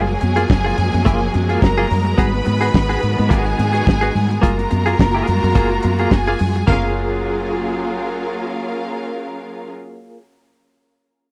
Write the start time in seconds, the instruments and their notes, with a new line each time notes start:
Already playing: fingered electric bass F#1, string section F3 F#3 G#3 A#3 G#4 G#5, clean electric guitar A#3
0.09 muted clean electric guitar stroke
0.20 fingered electric bass F#2, muted clean electric guitar stroke, closed hi-hat, high conga
0.36 clean electric guitar A#3 F4 G#4, closed hi-hat
0.49 fingered electric bass F#1, muted clean electric guitar stroke, kick, snare, muted conga, high conga
0.64 clean electric guitar A#3 F4 G#4, muted conga
0.78 fingered electric bass F#2, muted clean electric guitar stroke, closed hi-hat
0.93 fingered electric bass F#2, muted clean electric guitar stroke, closed hi-hat, high conga
1.05 fingered electric bass F#1, clean electric guitar A#3 F4 G#4, kick, closed hi-hat, muted conga
1.21 muted clean electric guitar stroke, muted conga
1.34 fingered electric bass F#2, muted clean electric guitar stroke, closed hi-hat, high conga
1.49 clean electric guitar A#3 F4 G#4, closed hi-hat
1.62 fingered electric bass F#1, string section A#4 A#5, muted clean electric guitar stroke, kick, snare, high conga
1.78 clean electric guitar A#3 F4 G#4
1.91 fingered electric bass F#2, snare, open hi-hat, low conga
2.05 muted clean electric guitar stroke, closed hi-hat
2.18 fingered electric bass G#1, string section D#3 B3 B4 B5, clean electric guitar B3 F#4 G#4, kick, closed hi-hat, low conga
2.33 muted clean electric guitar stroke, muted conga
2.45 fingered electric bass G#2, muted clean electric guitar stroke, closed hi-hat, high conga
2.61 clean electric guitar B3 F#4 G#4, closed hi-hat
2.74 fingered electric bass G#1, muted clean electric guitar stroke, kick, snare, high conga
2.89 clean electric guitar B3 F#4 G#4, closed hi-hat
3.01 fingered electric bass G#2, muted clean electric guitar stroke, closed hi-hat
3.17 fingered electric bass G#2, muted clean electric guitar stroke, closed hi-hat, high conga
3.29 fingered electric bass G#1, clean electric guitar B3 F#4 G#4, string section G#4 G#5, kick, closed hi-hat
3.45 muted clean electric guitar stroke, closed hi-hat
3.58 fingered electric bass G#2, muted clean electric guitar stroke, closed hi-hat, high conga
3.73 clean electric guitar B3 F#4 G#4, closed hi-hat
3.85 fingered electric bass G#1, muted clean electric guitar stroke, kick, snare, muted conga, high conga
4.01 clean electric guitar B3 F#4 G#4, closed hi-hat, muted conga
4.15 fingered electric bass G#2, open hi-hat, low conga
4.29 muted clean electric guitar stroke, closed hi-hat
4.42 fingered electric bass F#1, clean electric guitar A#3 F4 G#4, string section A#3 F4 F#4 A#4 A#5, kick, closed hi-hat, muted conga, low conga
4.58 muted clean electric guitar stroke, closed hi-hat, muted conga
4.70 fingered electric bass F#2, muted clean electric guitar stroke, closed hi-hat, high conga
4.86 clean electric guitar A#3 F4 G#4, closed hi-hat
4.99 fingered electric bass F#1, kick, snare, high conga
5.15 clean electric guitar A#3 F4 G#4, muted conga
5.27 fingered electric bass F#2, muted clean electric guitar stroke, closed hi-hat, low conga
5.43 fingered electric bass F#2, muted clean electric guitar stroke, closed hi-hat, high conga
5.55 fingered electric bass F#1, clean electric guitar A#3 F4 G#4, kick, closed hi-hat
5.71 muted clean electric guitar stroke, muted conga
5.83 fingered electric bass F#2, muted clean electric guitar stroke, closed hi-hat, high conga
5.99 clean electric guitar A#3 F4 G#4, closed hi-hat
6.11 fingered electric bass F#1, string section G#4 G#5, muted clean electric guitar stroke, kick, snare, high conga
6.27 clean electric guitar A#3 F4 G#4, closed hi-hat, muted conga
6.39 fingered electric bass F#2, muted clean electric guitar stroke, open hi-hat, low conga
6.55 muted clean electric guitar stroke, closed hi-hat
6.67 fingered electric bass F#1, string section F#3 A#3 C#4 F4 G#4 A#4 F5, clean electric guitar A#3 F4, kick, floor tom, high conga
6.72 clean electric guitar G#4